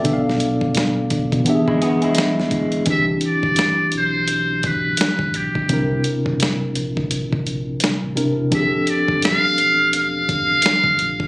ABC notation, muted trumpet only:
X:1
M:4/4
L:1/8
Q:"Swing 16ths" 1/4=85
K:C
V:1 name="Muted trumpet"
z8 | e d2 c2 B2 G- | G z6 z | e d f2 f4 |]